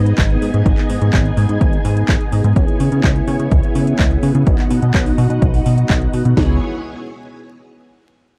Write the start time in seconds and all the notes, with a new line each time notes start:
Already playing: G#2 B3 D#4 G#4 D#5 G#5
0.06 closed hi-hat
0.18 G#1, kick, clap, closed hi-hat
0.30 closed hi-hat
0.42 G#2, open hi-hat
0.54 G#2, closed hi-hat
0.66 G#1, kick, closed hi-hat
0.78 clap, closed hi-hat
0.90 G#2, open hi-hat
1.01 G#2, closed hi-hat
1.13 G#1, kick, clap, closed hi-hat
1.25 closed hi-hat
1.37 G#2, open hi-hat
1.49 G#2, closed hi-hat
1.61 G#1, kick, closed hi-hat
1.73 closed hi-hat
1.85 G#2, open hi-hat
1.97 closed hi-hat
2.09 G#1, kick, clap, closed hi-hat
2.21 closed hi-hat
2.32 G#2, open hi-hat
2.44 G#2, closed hi-hat
2.56 C#2 B3 E4 C#5, kick, closed hi-hat
2.68 closed hi-hat
2.80 C#3, open hi-hat
2.92 C#3, closed hi-hat
3.04 C#2, kick, clap, closed hi-hat
3.16 closed hi-hat
3.28 C#3, open hi-hat
3.39 C#3, closed hi-hat
3.51 C#2, kick, closed hi-hat
3.63 closed hi-hat
3.75 C#3, open hi-hat
3.87 closed hi-hat
3.99 C#2, kick, clap, closed hi-hat
4.11 closed hi-hat
4.23 C#3, open hi-hat
4.35 C#3, closed hi-hat
4.47 B1 D#4 F#4 D#5 F#5, kick, closed hi-hat
4.59 clap, closed hi-hat
4.70 B2, open hi-hat
4.82 B2, closed hi-hat
4.94 B1, kick, clap, closed hi-hat
5.06 open hi-hat
5.18 B2, open hi-hat
5.30 B2, closed hi-hat
5.42 B1, kick, closed hi-hat
5.54 open hi-hat
5.66 B2, open hi-hat
5.78 closed hi-hat
5.90 B1, kick, clap, closed hi-hat
6.01 closed hi-hat
6.13 B2, open hi-hat
6.25 B2, closed hi-hat
6.37 C#2 B3 E4 G#4 C#5 G#5, kick, snare